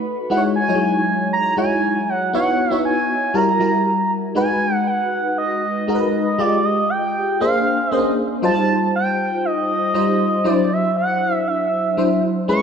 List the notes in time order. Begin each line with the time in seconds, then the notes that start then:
Already playing: A3 D#4 F#4 B4
0.30 G#3 D#4 E4 F#4 B4 F#5
0.37 C#5
0.56 G#5
0.68 F#3 D#4 E4 F#4 C#5
0.74 G#3
1.33 A#5
1.57 G#3 D#4 E4 F#4 C#5 G#5
2.09 F#5
2.33 B3 D#4 E4 F#4 C#5 F#5
2.70 B3 D#4 E4 F#4 C#5
2.85 G#5
3.34 G3 E4 F#4 A#4 A#5
3.59 G3 E4 F#4 A#4
4.35 G#3 D#4 F#4 B4 G#5
4.75 F#5
4.87 F#5
5.38 D#5
5.87 G#3 D#4 F#4 A#4
5.95 B4
6.38 G#3 F4 G4 D5 D#5
6.64 D#5
6.90 G5
7.40 A#3 D4 G#4 C5 F5
7.91 A#3 C#4 G#4 C5 D#5
7.98 D4
8.42 F#3 D#4 F4 C5 A5
8.48 G3
8.96 G5
9.45 D#5
9.94 G3 D#4 F4 C5
10.44 F#3 D4 E4 C5 D5
10.73 E5
10.97 F#5
11.35 E5
11.48 E5
11.97 F#3 D4 E4 C5
12.48 G#3 C#4 E4 B4 C#6